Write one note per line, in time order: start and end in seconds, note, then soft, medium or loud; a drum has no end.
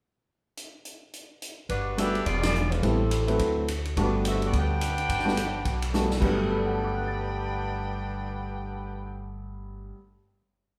0.57 closed hi-hat medium
0.85 closed hi-hat medium
1.13 closed hi-hat soft
1.42 closed hi-hat medium
1.69 2.23 G1 medium
1.69 1.96 G3 medium
1.69 1.96 D4 medium
1.69 1.96 F#4 medium
1.69 1.95 B4 medium
1.69 kick soft
1.69 ride medium
1.97 2.12 G3 medium
1.97 2.13 A3 medium
1.97 2.13 B3 soft
1.97 2.13 D4 medium
1.97 2.25 D4 loud
1.97 2.13 F#4 medium
1.97 2.25 G4 medium
1.97 2.25 B4 medium
1.97 2.25 E5 loud
1.97 hi-hat pedal medium
1.97 ride medium
2.15 ride soft
2.25 2.80 E1 medium
2.25 2.42 B3 medium
2.25 2.41 F4 medium
2.25 2.42 G#4 medium
2.25 2.41 D5 loud
2.25 kick soft
2.25 ride medium
2.42 2.69 B3 medium
2.42 2.69 F4 medium
2.42 2.69 G#4 medium
2.42 2.69 D5 medium
2.42 snare medium
2.42 ride medium
2.55 hi-hat pedal medium
2.71 2.83 G#3 medium
2.71 2.83 D4 medium
2.71 2.83 F4 medium
2.71 2.83 B4 medium
2.71 ride soft
2.82 3.36 A1 medium
2.82 2.97 G3 medium
2.82 3.39 G3 medium
2.82 2.98 A3 soft
2.82 2.98 B3 medium
2.82 3.68 C4 medium
2.82 2.98 C4 medium
2.82 2.98 E4 medium
2.82 3.68 E4 medium
2.82 3.68 A4 medium
2.82 kick soft
2.82 ride medium
3.11 hi-hat pedal medium
3.11 ride medium
3.27 3.65 F#3 medium
3.27 3.65 A3 medium
3.27 3.65 C4 medium
3.27 3.65 E4 medium
3.27 3.65 B4 medium
3.27 ride soft
3.39 3.93 D2 medium
3.39 kick soft
3.39 ride medium
3.68 hi-hat pedal soft
3.68 ride medium
3.85 ride soft
3.97 4.50 G1 medium
3.97 4.74 G3 medium
3.97 4.24 G3 medium
3.97 4.74 A3 medium
3.97 4.74 B3 soft
3.97 4.74 D4 medium
3.97 4.24 D4 medium
3.97 4.74 F#4 medium
3.97 4.24 F#4 medium
3.97 4.24 B4 medium
3.97 kick soft
3.97 ride medium
4.25 4.42 E5 loud
4.25 hi-hat pedal medium
4.25 ride medium
4.29 4.42 C4 medium
4.29 4.42 F#4 medium
4.29 4.42 A4 medium
4.42 4.54 B3 medium
4.42 4.54 G4 medium
4.42 ride soft
4.46 4.55 F#4 medium
4.46 4.55 D5 medium
4.53 5.06 D2 medium
4.53 kick soft
4.53 ride medium
4.58 5.92 D4 medium
4.58 5.92 B4 medium
4.58 5.91 F#5 medium
4.58 5.91 G5 loud
4.81 hi-hat pedal medium
4.81 ride medium
4.98 ride soft
5.09 5.62 G1 medium
5.09 kick soft
5.09 ride medium
5.19 snare soft
5.25 5.35 G3 medium
5.25 5.35 A3 medium
5.25 5.35 B3 medium
5.25 5.35 D4 medium
5.25 5.35 F#4 medium
5.25 snare soft
5.37 hi-hat pedal medium
5.37 ride medium
5.65 6.18 B1 medium
5.65 kick soft
5.65 ride medium
5.82 ride medium
5.93 6.08 G3 medium
5.93 6.08 A3 medium
5.93 6.08 B3 soft
5.93 6.08 D4 medium
5.93 6.09 F#4 medium
5.93 snare soft
5.93 hi-hat pedal medium
6.11 snare medium
6.20 9.91 G1 medium
6.20 9.94 G2 medium
6.20 9.96 F#3 medium
6.20 9.94 G3 medium
6.20 9.95 A3 medium
6.20 9.95 B3 medium
6.20 9.21 D4 medium
6.20 9.21 B4 medium
6.20 9.22 F#5 medium
6.20 9.22 G5 medium
6.20 kick medium
6.20 crash medium
6.50 9.91 A4 soft
6.57 9.95 D5 soft
6.66 9.99 F#5 soft
6.74 10.03 A5 soft
6.84 10.08 D6 soft
6.96 10.14 F#6 soft
7.07 10.20 A6 soft